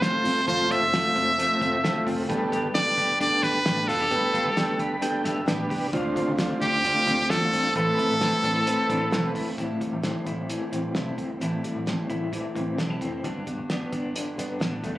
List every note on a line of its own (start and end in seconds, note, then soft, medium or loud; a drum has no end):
0.00 0.21 G1 medium
0.00 0.46 F3 medium
0.00 0.25 F3 medium
0.00 0.25 A3 medium
0.00 0.24 C4 medium
0.00 0.41 C4 medium
0.00 0.25 C4 medium
0.00 0.47 F4 medium
0.00 0.41 F4 medium
0.00 0.41 A4 medium
0.00 0.48 C5 medium
0.00 snare loud
0.00 closed hi-hat medium
0.04 0.24 F4 medium
0.25 0.44 G1 medium
0.25 0.47 A3 soft
0.25 0.48 C4 medium
0.25 0.48 F4 medium
0.25 open hi-hat medium
0.47 0.66 F1 loud
0.47 0.71 F3 medium
0.47 0.71 A3 medium
0.47 0.87 C4 medium
0.47 0.70 C4 medium
0.47 0.87 F4 medium
0.47 0.68 F4 medium
0.47 0.87 A4 loud
0.47 0.73 C5 loud
0.47 kick loud
0.47 closed hi-hat medium
0.70 0.91 A3 soft
0.70 0.92 C4 medium
0.70 0.93 F4 medium
0.70 2.07 E5 loud
0.70 kick medium
0.70 closed hi-hat medium
0.81 1.00 F1 loud
0.92 1.15 F3 medium
0.92 1.16 A3 medium
0.92 1.32 C4 medium
0.92 1.15 C4 medium
0.92 1.32 F4 medium
0.92 1.14 F4 medium
0.92 1.32 A4 medium
0.92 snare loud
0.92 closed hi-hat medium
1.15 1.44 F1 medium
1.15 1.37 A3 soft
1.15 1.38 C4 soft
1.15 1.38 F4 medium
1.15 kick medium
1.15 closed hi-hat medium
1.37 1.61 F3 medium
1.37 1.61 A3 medium
1.37 1.77 C4 medium
1.37 1.61 C4 medium
1.37 1.78 F4 medium
1.37 1.59 F4 medium
1.37 1.78 A4 medium
1.37 closed hi-hat loud
1.60 1.80 F1 medium
1.60 1.83 A3 soft
1.60 1.84 C4 medium
1.60 1.84 F4 medium
1.60 kick loud
1.60 closed hi-hat medium
1.83 2.03 G1 medium
1.83 2.07 F3 medium
1.83 2.07 A3 medium
1.83 2.23 C4 medium
1.83 2.07 C4 loud
1.83 2.23 F4 medium
1.83 2.05 F4 medium
1.83 2.23 A4 medium
1.83 snare loud
1.83 closed hi-hat medium
2.07 2.25 F1 medium
2.07 2.29 A3 soft
2.07 2.30 C4 soft
2.07 2.29 F4 medium
2.07 kick medium
2.07 open hi-hat medium
2.29 2.48 G1 medium
2.29 2.52 G3 medium
2.29 2.53 A3 medium
2.29 2.68 B3 loud
2.29 2.53 D4 medium
2.29 2.68 G4 loud
2.29 2.52 G4 medium
2.29 2.68 A4 loud
2.29 2.50 B4 medium
2.29 kick loud
2.29 closed hi-hat medium
2.51 2.75 D4 soft
2.51 2.75 G4 medium
2.51 2.75 B4 medium
2.51 kick medium
2.51 closed hi-hat medium
2.64 2.82 G1 medium
2.75 2.98 G3 medium
2.75 2.98 A3 medium
2.75 3.14 B3 medium
2.75 2.98 D4 medium
2.75 3.14 G4 medium
2.75 2.97 G4 medium
2.75 3.14 A4 medium
2.75 2.96 B4 medium
2.75 3.17 D5 loud
2.75 snare loud
2.75 closed hi-hat medium
2.97 3.26 G1 medium
2.97 3.20 D4 soft
2.97 3.21 G4 soft
2.97 3.20 B4 medium
2.97 kick medium
2.97 closed hi-hat medium
3.20 3.43 A3 soft
3.20 3.59 B3 medium
3.20 3.44 D4 medium
3.20 3.60 G4 medium
3.20 3.43 G4 medium
3.20 3.60 A4 medium
3.20 3.41 B4 medium
3.20 3.44 D5 loud
3.20 kick medium
3.20 closed hi-hat medium
3.42 3.62 G1 medium
3.42 3.65 D4 soft
3.42 3.66 G4 soft
3.42 3.66 B4 medium
3.42 3.89 B4 medium
3.42 kick medium
3.42 snare soft
3.42 closed hi-hat medium
3.65 3.90 A1 medium
3.65 3.88 G3 medium
3.65 3.89 A3 medium
3.65 4.05 B3 medium
3.65 3.89 D4 medium
3.65 4.05 G4 medium
3.65 3.88 G4 medium
3.65 4.05 A4 medium
3.65 3.86 B4 medium
3.65 snare loud
3.65 closed hi-hat medium
3.87 4.07 F1 medium
3.87 4.10 D4 soft
3.87 3.99 F4 medium
3.87 4.11 G4 soft
3.87 4.79 A4 medium
3.87 4.11 B4 medium
3.87 open hi-hat medium
3.99 4.33 G4 soft
4.10 4.30 G1 medium
4.10 4.34 G3 medium
4.10 4.34 A3 medium
4.10 4.51 B3 medium
4.10 4.34 D4 medium
4.10 4.51 G4 medium
4.10 4.33 G4 medium
4.10 4.51 B4 loud
4.10 4.31 B4 medium
4.10 kick loud
4.10 closed hi-hat medium
4.32 4.55 D4 soft
4.32 4.45 F4 medium
4.32 4.56 G4 soft
4.32 4.56 B4 medium
4.32 kick medium
4.32 closed hi-hat medium
4.45 4.64 G1 loud
4.45 4.78 G4 medium
4.55 4.79 G3 medium
4.55 4.79 A3 loud
4.55 4.96 B3 medium
4.55 4.79 D4 medium
4.55 4.78 G4 medium
4.55 4.96 G4 medium
4.55 4.96 A4 loud
4.55 4.77 B4 loud
4.55 snare loud
4.55 closed hi-hat medium
4.78 5.08 G1 medium
4.78 5.00 D4 soft
4.78 5.02 G4 medium
4.78 5.02 B4 medium
4.78 5.01 B5 medium
4.78 kick medium
4.78 closed hi-hat medium
5.01 5.24 A3 medium
5.01 5.41 B3 medium
5.01 5.25 D4 medium
5.01 5.41 G4 medium
5.01 5.23 G4 medium
5.01 5.42 A4 loud
5.01 5.22 B4 medium
5.01 5.24 G5 medium
5.01 closed hi-hat medium
5.23 5.44 G1 medium
5.23 5.46 D4 medium
5.23 5.47 G4 medium
5.23 5.47 B4 medium
5.23 5.46 E5 medium
5.23 snare soft
5.23 closed hi-hat medium
5.46 5.67 A1 medium
5.46 5.70 G3 medium
5.46 5.70 A3 medium
5.46 5.87 B3 medium
5.46 5.71 D4 medium
5.46 5.69 G4 loud
5.46 5.87 G4 medium
5.46 5.68 B4 loud
5.46 5.87 B4 medium
5.46 5.91 D5 medium
5.46 snare loud
5.46 closed hi-hat medium
5.69 5.89 C2 medium
5.69 5.93 D4 soft
5.69 5.93 G4 medium
5.69 5.93 B4 medium
5.69 kick medium
5.69 open hi-hat medium
5.92 6.12 D2 loud
5.92 6.15 D3 medium
5.92 6.16 A3 medium
5.92 6.16 C4 medium
5.92 6.33 D4 loud
5.92 6.33 F4 loud
5.92 6.14 F4 medium
5.92 6.33 C5 loud
5.92 kick loud
5.92 closed hi-hat medium
6.15 6.37 A3 soft
6.15 6.38 C4 medium
6.15 6.38 F4 medium
6.15 kick medium
6.15 closed hi-hat medium
6.28 6.47 D2 loud
6.37 6.61 D3 loud
6.37 6.61 A3 medium
6.37 6.60 C4 medium
6.37 6.78 D4 medium
6.37 6.58 F4 loud
6.37 6.78 F4 medium
6.37 6.79 C5 loud
6.37 snare loud
6.37 closed hi-hat medium
6.60 6.90 D2 medium
6.60 6.83 A3 soft
6.60 6.84 C4 medium
6.60 6.84 F4 medium
6.60 7.32 G4 loud
6.60 kick medium
6.60 closed hi-hat medium
6.83 7.07 D3 medium
6.83 7.07 A3 medium
6.83 7.06 C4 medium
6.83 7.24 D4 medium
6.83 7.24 F4 medium
6.83 7.04 F4 medium
6.83 7.24 C5 medium
6.83 kick medium
6.83 closed hi-hat loud
7.05 7.26 D2 loud
7.05 7.29 A3 soft
7.05 7.29 C4 soft
7.05 7.29 F4 medium
7.05 kick medium
7.05 snare soft
7.05 closed hi-hat medium
7.29 7.49 E2 loud
7.29 7.52 D3 medium
7.29 7.53 A3 medium
7.29 7.52 C4 medium
7.29 7.69 D4 medium
7.29 7.69 F4 medium
7.29 7.50 F4 medium
7.29 7.76 A4 loud
7.29 7.70 C5 medium
7.29 snare loud
7.29 closed hi-hat medium
7.51 7.72 G1 loud
7.51 7.75 A3 soft
7.51 7.75 C4 soft
7.51 7.75 F4 medium
7.51 open hi-hat medium
7.75 7.95 A1 loud
7.75 7.98 A2 medium
7.75 7.98 E3 medium
7.75 7.99 A3 medium
7.75 8.15 C4 medium
7.75 7.98 C4 medium
7.75 7.97 E4 medium
7.75 8.15 A4 medium
7.75 9.32 A4 loud
7.75 8.15 B4 loud
7.75 7.96 B4 medium
7.75 kick loud
7.75 closed hi-hat medium
7.97 8.20 A3 soft
7.97 8.21 C4 soft
7.97 8.21 E4 soft
7.97 8.21 B4 medium
7.97 kick medium
7.97 closed hi-hat medium
8.10 8.28 A1 loud
8.20 8.44 A2 medium
8.20 8.44 E3 medium
8.20 8.44 A3 medium
8.20 8.60 C4 medium
8.20 8.44 C4 medium
8.20 8.43 E4 medium
8.20 8.61 A4 medium
8.20 8.61 B4 medium
8.20 8.41 B4 medium
8.20 snare loud
8.20 closed hi-hat medium
8.43 8.72 A1 medium
8.43 8.64 A3 soft
8.43 8.65 C4 medium
8.43 8.56 D4 medium
8.43 8.66 E4 medium
8.43 8.66 B4 medium
8.43 kick medium
8.43 closed hi-hat medium
8.56 8.90 E4 soft
8.65 8.89 A3 medium
8.65 8.89 C4 medium
8.65 9.06 C4 medium
8.65 8.88 E4 medium
8.65 9.06 A4 medium
8.65 9.06 B4 loud
8.65 8.87 B4 medium
8.65 closed hi-hat medium
8.88 9.08 A1 medium
8.88 9.11 A3 medium
8.88 9.11 C4 medium
8.88 9.01 D4 medium
8.88 9.12 E4 medium
8.88 9.12 B4 medium
8.88 kick medium
8.88 closed hi-hat medium
9.01 9.34 E4 soft
9.11 9.31 B1 medium
9.11 9.35 A2 medium
9.11 9.35 E3 medium
9.11 9.35 A3 medium
9.11 9.52 C4 medium
9.11 9.35 C4 medium
9.11 9.34 E4 loud
9.11 9.52 A4 medium
9.11 9.52 B4 medium
9.11 9.33 B4 loud
9.11 snare loud
9.11 closed hi-hat medium
9.34 9.54 G1 medium
9.34 9.59 A3 soft
9.34 9.58 C4 medium
9.34 9.58 E4 medium
9.34 9.58 B4 medium
9.34 kick medium
9.34 open hi-hat medium
9.58 9.77 A1 medium
9.58 9.81 A2 medium
9.58 9.81 E3 medium
9.58 9.82 G3 medium
9.58 9.81 C4 medium
9.58 9.80 E4 medium
9.58 9.79 A4 medium
9.58 kick loud
9.58 closed hi-hat medium
9.80 10.02 G3 soft
9.80 10.03 C4 soft
9.80 10.03 E4 soft
9.80 10.04 A4 soft
9.80 kick medium
9.80 closed hi-hat medium
9.92 10.11 A1 medium
10.03 10.26 A2 medium
10.03 10.27 E3 medium
10.03 10.27 G3 medium
10.03 10.26 C4 medium
10.03 10.26 E4 medium
10.03 10.24 A4 medium
10.03 snare medium
10.03 closed hi-hat medium
10.25 10.55 A1 medium
10.25 10.47 G3 soft
10.25 10.48 C4 soft
10.25 10.50 E4 soft
10.25 10.49 A4 medium
10.25 kick medium
10.25 closed hi-hat medium
10.49 12.31 E3 medium
10.49 10.72 G3 medium
10.49 10.72 C4 medium
10.49 10.71 E4 medium
10.49 10.70 A4 medium
10.49 closed hi-hat medium
10.71 10.91 A1 medium
10.71 10.94 G3 soft
10.71 10.94 C4 soft
10.71 10.95 E4 medium
10.71 10.95 A4 medium
10.71 closed hi-hat medium
10.94 11.14 B1 medium
10.94 11.18 A2 medium
10.94 11.18 E3 medium
10.94 11.18 G3 medium
10.94 11.18 C4 medium
10.94 11.17 E4 medium
10.94 11.16 A4 medium
10.94 snare loud
10.94 closed hi-hat medium
11.17 11.37 G1 medium
11.17 11.40 G3 soft
11.17 11.40 C4 soft
11.17 11.41 E4 soft
11.17 11.40 A4 soft
11.17 kick medium
11.17 closed hi-hat medium
11.40 11.60 A1 medium
11.40 11.63 A2 medium
11.40 11.64 E3 medium
11.40 11.64 G3 medium
11.40 11.64 C4 medium
11.40 11.63 E4 medium
11.40 11.62 A4 medium
11.40 closed hi-hat medium
11.63 11.85 G3 soft
11.63 11.85 C4 soft
11.63 11.86 E4 medium
11.63 11.86 A4 soft
11.63 closed hi-hat medium
11.75 11.94 A1 medium
11.86 12.09 A2 medium
11.86 12.09 E3 medium
11.86 12.10 G3 medium
11.86 12.10 C4 medium
11.86 12.09 E4 medium
11.86 12.07 A4 medium
11.86 snare medium
11.86 closed hi-hat medium
12.08 12.38 A1 medium
12.08 12.31 G3 soft
12.08 12.32 C4 soft
12.08 12.33 E4 medium
12.08 12.32 A4 medium
12.08 kick medium
12.08 closed hi-hat medium
12.32 13.29 E3 medium
12.32 12.55 G3 medium
12.32 12.56 C4 medium
12.32 12.55 E4 medium
12.32 12.54 A4 medium
12.32 kick medium
12.32 closed hi-hat medium
12.55 12.74 A1 medium
12.55 12.77 G3 soft
12.55 12.77 C4 soft
12.55 12.78 E4 medium
12.55 12.78 A4 medium
12.55 kick medium
12.55 closed hi-hat medium
12.77 12.97 B1 medium
12.77 13.01 A2 medium
12.77 13.01 E3 medium
12.77 13.01 G3 medium
12.77 13.01 C4 medium
12.77 12.90 D4 medium
12.77 13.01 E4 medium
12.77 13.00 A4 medium
12.77 snare loud
12.77 closed hi-hat medium
12.90 13.24 E4 medium
13.01 13.20 F1 medium
13.01 13.23 G3 soft
13.01 13.24 C4 soft
13.01 13.24 E4 medium
13.01 13.24 A4 medium
13.01 kick medium
13.01 closed hi-hat medium
13.24 13.43 G1 medium
13.24 13.47 G2 medium
13.24 13.47 D3 medium
13.24 13.47 G3 medium
13.24 13.47 B3 medium
13.24 13.46 D4 medium
13.24 13.45 G4 medium
13.24 kick loud
13.24 closed hi-hat medium
13.46 13.69 G3 soft
13.46 13.69 B3 soft
13.46 13.70 D4 soft
13.46 13.69 G4 medium
13.46 kick medium
13.46 closed hi-hat medium
13.58 13.77 G1 medium
13.70 13.93 G2 medium
13.70 13.93 D3 medium
13.70 13.93 G3 medium
13.70 13.92 B3 medium
13.70 13.91 D4 medium
13.70 13.91 G4 medium
13.70 snare medium
13.70 closed hi-hat medium
13.92 14.21 G1 medium
13.92 14.13 G3 soft
13.92 14.15 B3 soft
13.92 14.15 D4 medium
13.92 14.15 G4 medium
13.92 kick medium
13.92 closed hi-hat medium
14.15 14.98 D3 medium
14.15 14.38 G3 medium
14.15 14.38 B3 medium
14.15 14.37 D4 medium
14.15 14.36 G4 medium
14.15 closed hi-hat medium
14.37 14.57 G1 medium
14.37 14.59 G3 soft
14.37 14.59 B3 soft
14.37 14.60 D4 medium
14.37 14.60 G4 medium
14.37 closed hi-hat medium
14.59 14.80 A1 medium
14.59 14.83 G2 medium
14.59 14.84 D3 medium
14.59 14.84 G3 medium
14.59 14.84 B3 medium
14.59 14.83 D4 medium
14.59 14.81 G4 medium
14.59 snare medium
14.59 closed hi-hat medium
14.83 14.98 F1 medium
14.83 14.98 G3 soft
14.83 14.95 A3 medium
14.83 14.98 B3 soft
14.83 14.98 D4 medium
14.83 14.98 G4 medium
14.83 kick medium
14.83 closed hi-hat medium